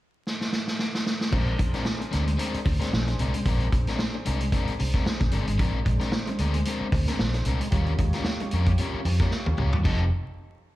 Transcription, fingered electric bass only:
1.33 A#1
1.59 A#1
2.14 D2
2.54 muted fingered electric bass stroke
2.66 D2
2.93 A#1
3.20 C2
3.46 A#1
3.72 A#1
4.27 C2
4.69 muted fingered electric bass stroke
4.80 C2
5.21 A#1
5.33 G1
5.47 G#1
5.59 A#1
5.86 A#1
6.39 D2
6.81 muted fingered electric bass stroke
6.92 D2
7.20 A#1
7.46 C2
7.72 D#2
7.98 D#2
8.53 F2
8.94 muted fingered electric bass stroke
9.05 F2
9.47 D#2
9.58 C#2
9.73 D#2
9.85 F1

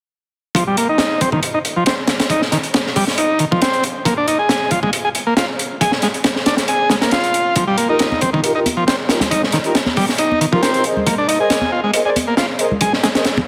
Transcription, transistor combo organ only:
0.55 F3
0.67 G3
0.77 A#3
0.89 D#4
1.21 C4
1.33 D#3
1.54 D#4
1.76 F3
1.87 C4
2.31 D#4
2.52 D#3
2.96 G3
3.18 D#4
3.40 D#3
3.51 F3
3.62 C4
4.05 A#3
4.17 D4
4.28 D#4
4.39 G#4
4.71 F4
4.83 G#3
5.05 G#4
5.27 A#3
5.37 F4
5.81 G#4
6.03 G#3
6.47 D4
6.69 G#4
6.91 G#3
7.02 A#3
7.12 F4
7.56 F3
7.67 G3
7.77 A#3
7.89 D#4
8.21 C4
8.33 D#3
8.55 D#4
8.77 F3
8.87 C4
9.31 D#4
9.53 D#3
9.97 G3
10.19 D#4
10.41 D#3
10.52 F3
10.62 C4
11.07 A#3
11.18 D4
11.28 D#4
11.40 G#4
11.72 F4
11.84 G#3
12.05 G#4
12.27 A#3
12.38 F4
12.81 G#4
13.03 G#3

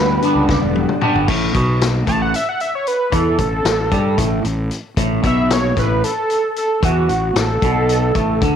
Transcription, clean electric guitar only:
Already playing: G2 D3 G3 B3 D4
0.22 G2 D3 G3 B3 D4
1.01 G2 D3 G3 B3 D4
1.28 A2
1.54 B2
2.07 A2
3.12 E3
3.39 A2
3.65 A2
3.92 G3
4.18 A2
4.45 A2
4.98 A2
5.23 B2
5.77 A2
6.83 E3
7.09 A2
7.35 A2
7.63 B2
8.15 A2
8.42 D3

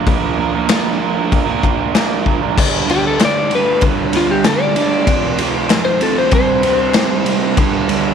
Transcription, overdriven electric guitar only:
0.04 A#2 F3 A#3 D4 F4 A#4
0.36 A#3 D4 F4 A#4
0.52 A#3 D4 F4 A#4
0.66 A#2 F3 A#3 D4 F4 A#4
0.98 A#3 D4 F4 A#4
1.15 A#3 D4 F4 A#4
1.45 A#3 D4 F4 A#4
1.61 A#3 D4 F4 A#4
1.93 A#2 F3 A#3 D4 F4 A#4
2.24 A#3 D4 F4 A#4
2.40 A#3 D4 F4 A#4
2.56 G2 D3 G3
2.87 G2 D3 G3
3.17 G2 D3 G3
3.50 G2 D3 G3
3.81 G2 D3 G3
4.13 G2 D3 G3
4.45 G2 D3 G3
4.76 G2 D3 G3
5.07 F2 C3 F3
5.38 F2 C3 F3
5.69 F2 C3 F3
6.00 F2 C3 F3
6.32 C3 G3 C4
6.63 C3 G3 C4
6.95 C3 G3 C4
7.25 C3 G3 C4
7.56 G2 D3 G3
7.88 G2 D3 G3

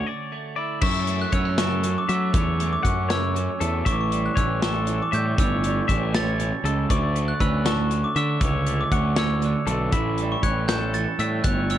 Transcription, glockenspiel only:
0.83 C#6
1.22 F#6
1.35 E6
1.59 C#6
1.98 D6
2.11 E6
2.73 D6
2.87 C#6
3.11 E6
3.87 C#6
3.92 D6
4.01 C#6
4.26 F#6
4.38 E6
4.63 C#6
5.02 D6
5.14 G6
5.40 E6
6.15 A6
6.90 C#6
7.28 F#6
7.41 E6
7.66 C#6
8.04 D6
8.17 E6
8.81 D6
8.94 C#6
9.19 E6
9.93 B5
10.32 C#6
10.43 F#6
10.68 G6
10.94 A6
11.19 E6
11.44 F#6
11.71 E6

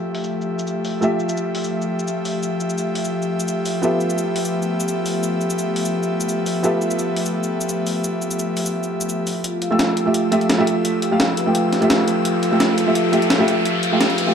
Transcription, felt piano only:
Already playing: A3 F4 G4 E5
1.01 A3 F4 G4 E5
3.82 B3 F4 G4 A4 E5
6.63 B3 F4 G4 A4 E5
9.71 A3 F4 G4 E6
10.06 A3 F4 G4 E5
10.31 A3 F4 G4 E5
10.58 A3 F4 G4 E5
11.11 A3 F4 G4 F5
11.46 A3 F4 G4 G5
11.80 A3 F4 G4 E5
12.51 A3 F4 G4 E6
12.87 A3 F4 G4 E5
13.12 A3 F4 G4 E5
13.38 A3 F4 G4 E5
13.92 A3 F4 G4 F5
14.27 A3 F4 G4 G5

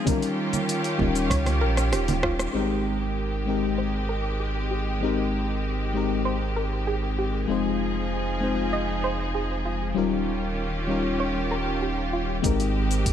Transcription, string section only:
0.07 D#3 C#4 F4 G4
2.54 G#3 C4 G4
7.49 F3 D#4 G#4
9.96 D#3 C#4 F4 G4
12.43 G#3 C4 G4

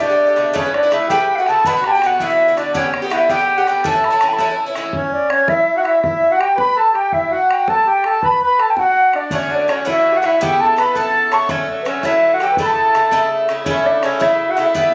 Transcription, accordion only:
0.00 D4
0.55 C#4
0.76 D4
0.92 E4
1.09 G4
1.39 F#4
1.48 A4
1.66 B4
1.81 F#4
1.86 G4
2.06 F#4
2.20 E4
2.56 D4
2.75 C#4
3.12 E4
3.29 G4
3.83 A4
4.08 A4
4.32 A4
4.95 C#4
5.30 C#4
5.47 E4
5.76 F#4
5.81 E4
6.01 E4
6.31 F#4
6.38 G4
6.56 B4
6.76 A4
6.93 G4
7.12 E4
7.30 F#4
7.68 A4
7.86 G4
8.05 A4
8.23 B4
8.43 B4
8.59 A4
8.78 F#4
9.15 D4
9.32 C#4
9.50 D4
9.68 C#4
9.87 E4
10.11 F#4 G4
10.25 E4
10.42 G4
10.62 A4
10.78 B4
10.95 A4
11.31 C#5
11.48 C#4
11.86 C#4
12.03 E4
12.34 F#4
12.41 G4
12.52 B4
12.59 A4
13.65 C#4
13.84 D4
14.02 C#4
14.20 E4
14.49 F#4
14.58 E4
14.76 E4

